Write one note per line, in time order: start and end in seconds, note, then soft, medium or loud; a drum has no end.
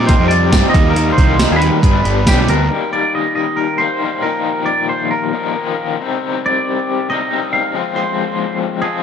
0.00 0.13 A#2 loud
0.06 0.51 C3 loud
0.06 0.53 G3 medium
0.06 0.53 C4 medium
0.06 0.28 C5 loud
0.06 0.28 C6 medium
0.06 kick medium
0.06 closed hi-hat loud
0.11 0.54 D#4 medium
0.19 0.53 F2 medium
0.27 0.52 C4 medium
0.27 0.53 D#4 medium
0.27 0.69 D5 loud
0.27 0.69 D6 medium
0.27 closed hi-hat medium
0.31 0.51 C3 medium
0.31 0.52 G3 medium
0.53 0.62 G2 loud
0.53 0.73 C3 medium
0.53 0.75 G3 medium
0.53 0.74 C4 medium
0.53 0.73 D#4 medium
0.53 kick medium
0.53 snare loud
0.53 closed hi-hat medium
0.53 tambourine loud
0.70 0.90 D#5 medium
0.70 0.92 D#6 medium
0.74 1.10 D#2 loud
0.74 0.96 D#3 medium
0.74 0.96 G3 medium
0.74 0.97 A#3 medium
0.74 0.98 D#4 loud
0.74 kick loud
0.74 closed hi-hat medium
0.90 1.12 A#4 medium
0.90 1.14 A#5 medium
0.96 1.39 D#3 medium
0.96 1.19 G3 medium
0.96 1.18 A#3 loud
0.96 1.17 D#4 medium
0.96 closed hi-hat loud
1.12 1.53 C5 medium
1.12 1.50 C6 medium
1.18 1.45 C2 medium
1.18 1.40 G3 medium
1.18 1.41 A#3 medium
1.18 1.41 D#4 medium
1.18 kick medium
1.18 closed hi-hat medium
1.40 1.82 D#3 medium
1.40 1.63 G3 medium
1.40 1.61 A#3 medium
1.40 1.60 D#4 medium
1.40 snare loud
1.40 closed hi-hat medium
1.40 tambourine loud
1.51 1.69 D#2 medium
1.51 1.60 G#4 medium
1.51 1.61 G#5 medium
1.56 2.42 B4 medium
1.56 2.43 B5 medium
1.61 1.82 G3 medium
1.61 1.82 A#3 medium
1.61 1.82 D#4 medium
1.61 closed hi-hat medium
1.81 2.48 G2 loud
1.81 2.01 G2 medium
1.81 2.25 D3 medium
1.81 2.26 G3 medium
1.81 2.27 B3 medium
1.81 2.28 D4 loud
1.81 kick medium
1.81 closed hi-hat loud
2.03 2.25 G1 medium
2.03 2.49 G2 medium
2.03 2.24 D3 medium
2.03 2.26 G3 loud
2.03 2.26 B3 medium
2.03 2.27 D4 loud
2.03 closed hi-hat medium
2.26 2.46 B1 medium
2.26 2.68 D3 medium
2.26 2.49 G3 medium
2.26 2.48 B3 medium
2.26 2.47 D4 medium
2.26 2.50 G4 medium
2.26 kick medium
2.26 snare loud
2.26 closed hi-hat loud
2.26 tambourine loud
2.48 2.68 D2 medium
2.48 2.68 G3 medium
2.48 2.70 B3 medium
2.48 2.69 D4 medium
2.48 2.90 A#4 loud
2.48 closed hi-hat medium
2.68 3.77 D#3 medium
2.68 3.78 G3 medium
2.68 3.79 A#3 medium
2.68 3.79 D#4 medium
2.93 3.13 D5 medium
3.15 3.34 D#5 medium
3.35 3.58 D#5 medium
3.57 3.80 A#4 medium
3.78 4.01 G3 medium
3.78 4.01 A#3 medium
3.78 4.05 D#4 medium
3.78 4.24 C5 medium
3.82 4.01 D#3 medium
4.02 4.23 D#3 medium
4.02 4.23 G3 medium
4.02 4.24 A#3 medium
4.02 4.26 D#4 medium
4.22 5.32 A#2 medium
4.22 5.32 D#3 medium
4.22 5.33 F3 medium
4.22 5.33 A#3 medium
4.22 5.33 D#4 medium
4.22 4.68 A#4 medium
4.66 4.89 D5 medium
4.89 5.12 C5 medium
5.11 5.95 A#4 medium
5.33 5.54 A#2 medium
5.33 5.54 D#3 medium
5.33 5.55 F3 medium
5.33 5.55 A#3 medium
5.33 5.54 D#4 medium
5.55 5.99 A#2 medium
5.55 5.99 D#3 medium
5.55 5.98 F3 medium
5.55 5.98 A#3 medium
5.55 5.98 D#4 medium
6.00 7.07 C3 medium
6.00 7.09 G3 medium
6.00 7.10 C4 loud
6.00 7.09 D#4 medium
6.46 7.09 D5 medium
7.09 7.29 C3 medium
7.09 7.30 G3 medium
7.09 7.30 C4 medium
7.09 7.29 D#4 medium
7.09 7.50 D#5 medium
7.31 7.73 C3 medium
7.31 7.74 G3 medium
7.31 7.73 C4 medium
7.31 7.73 D#4 medium
7.53 7.96 F5 medium
7.74 8.81 F3 medium
7.74 8.83 G#3 medium
7.74 8.82 C4 medium
7.74 8.83 F4 medium
7.96 8.57 C5 medium
8.82 9.03 F3 medium
8.82 9.03 G#3 medium
8.82 9.03 C4 medium
8.82 9.03 F4 medium
8.82 9.03 G#4 medium